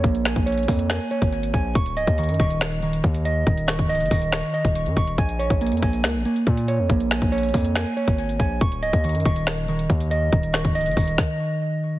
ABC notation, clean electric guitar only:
X:1
M:4/4
L:1/8
Q:1/4=140
K:Bbphr
V:1 name="Clean electric guitar"
[B,da] a d B, a d2 a | d' e E, d'2 E,2 e | E, d' e E, d' e2 d' | a d B, a2 B,2 d |
B, a d B, a d2 a | d' e E, d'2 E,2 e | E, d' e E,4- E, |]